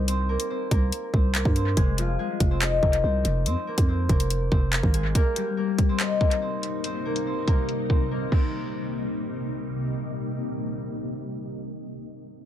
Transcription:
Already playing: C2 G3 A#3 D#4 G4 A#4 D#5
0.08 C4 C5, closed hi-hat
0.29 A#3 A#4
0.40 closed hi-hat
0.50 C4 C5
0.71 C2 A#3 A#4, kick, closed hi-hat
0.92 closed hi-hat
1.13 C2 C4 C5, kick
1.35 A#3 A#4, clap, closed hi-hat
1.45 G2, kick
1.56 C4 C5, closed hi-hat
1.77 F1 G#3 G#4, kick, closed hi-hat
1.98 F3 F4, closed hi-hat
2.19 G#3 G#4
2.40 F1, kick, closed hi-hat
2.51 C4 C5
2.62 D#4 D#5, clap, closed hi-hat
2.82 F1 A#3 A#4, kick
2.93 closed hi-hat
3.04 C2 C4 C5
3.25 F1, closed hi-hat
3.46 F2 C4 C5, closed hi-hat
3.67 A#3 A#4
3.78 F2, kick, closed hi-hat
3.88 C4 C5
4.09 F1 A#3 A#4, kick, closed hi-hat
4.20 closed hi-hat
4.30 closed hi-hat
4.52 F1 C4 C5, kick
4.73 A#3 A#4, clap, closed hi-hat
4.83 G#1, kick
4.94 G#3 G#4, closed hi-hat
5.15 C3 G3 A#3 D#4 A#4, kick, closed hi-hat
5.36 G3 G4, closed hi-hat
5.57 A#3 A#4
5.78 kick, closed hi-hat
5.89 C4 C5
6.00 D#4 D#5, clap, closed hi-hat
6.21 A#3 A#4, kick
6.31 closed hi-hat
6.42 C4 C5
6.63 closed hi-hat
6.84 C4 C5, closed hi-hat
7.05 A#3 A#4
7.16 closed hi-hat
7.27 C4 C5
7.48 A#3 A#4, kick, closed hi-hat
7.69 closed hi-hat
7.90 C4 C5, kick
8.11 A#3 A#4
8.32 C3 G3 A#3 C4 D#4, kick, crash

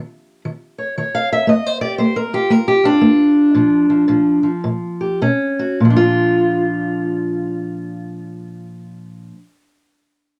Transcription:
Already playing: D#3
0.45 D#3
0.78 C#5
0.98 D#3 C#5
1.15 F5
1.33 E5
1.47 A#3 D#5
1.66 C5
1.81 G4 D5
1.98 A#3 C5
2.16 A#4
2.33 F4 G4
2.50 A#3 A#4
2.68 G4
2.84 D4 F4
3.01 A#3
3.54 A#2 F3
3.90 F3
4.08 A#2 F3
4.43 F3
4.64 A#2
5.01 G4
5.22 B2 C#4
5.59 F#4
5.80 A#2
5.85 F3
5.90 D4
5.97 F4

